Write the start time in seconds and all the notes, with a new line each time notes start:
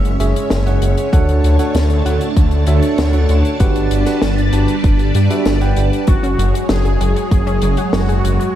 Already playing: F#1 G#3 C#4 C#5 E5
0.05 closed hi-hat
0.20 F#1 G#4 C#5 E5, closed hi-hat
0.36 closed hi-hat
0.50 F#1, snare, closed hi-hat
0.67 G#4 C#5 F#5, closed hi-hat
0.82 F#1, closed hi-hat
0.98 closed hi-hat
1.13 D2 A3 D4 F#4 A4 C#5 F#5 A5, kick, closed hi-hat
1.29 closed hi-hat
1.44 D2, closed hi-hat
1.59 D4 F#4 A4 C#5 F#5, closed hi-hat
1.75 D2, snare, closed hi-hat
1.90 closed hi-hat
2.06 D2 D4 F#4 A4 C#5 F#5, closed hi-hat
2.21 closed hi-hat
2.37 D2, kick, closed hi-hat
2.51 closed hi-hat
2.67 D2 D4 F#4 A4 C#5 E5, closed hi-hat
2.82 closed hi-hat
2.98 D2, snare, closed hi-hat
3.13 D4 F#4 A4 C#5 F#5, closed hi-hat
3.29 D2, closed hi-hat
3.45 closed hi-hat
3.60 G1 G3 D4 F#4 G4 B4 D5 F#5, kick, closed hi-hat
3.76 closed hi-hat
3.91 G1, closed hi-hat
4.06 D4 F#4 G4 B4 F#5, snare, closed hi-hat
4.22 G1, snare, closed hi-hat
4.38 closed hi-hat
4.53 G1 D4 F#4 G4 B4 A5, closed hi-hat
4.68 closed hi-hat
4.84 G1, kick, closed hi-hat
4.99 closed hi-hat
5.15 G2, closed hi-hat
5.30 D4 F#4 G4 B4 E5, closed hi-hat
5.45 G1, snare, closed hi-hat
5.61 D4 G4 B4 F#5 G5, closed hi-hat
5.76 G1, closed hi-hat
5.93 closed hi-hat
6.07 F#1 F#3 G#3 F#4 G#4 C#5, kick, closed hi-hat
6.23 C#4, closed hi-hat
6.39 F#1 F#3, closed hi-hat
6.54 F#4, closed hi-hat
6.69 F#1 F#3 G#4, snare, closed hi-hat
6.85 G#4, closed hi-hat
7.01 F#1 F#3, closed hi-hat
7.16 C#5, closed hi-hat
7.31 F#1 F#3 G#4, kick, closed hi-hat
7.47 C#4, closed hi-hat
7.62 F#1 F#3, closed hi-hat
7.77 F#4, closed hi-hat
7.93 F#1 F#3 F#4, snare, closed hi-hat
8.09 G#4, closed hi-hat
8.24 F#1 F#3, closed hi-hat
8.40 C#5, closed hi-hat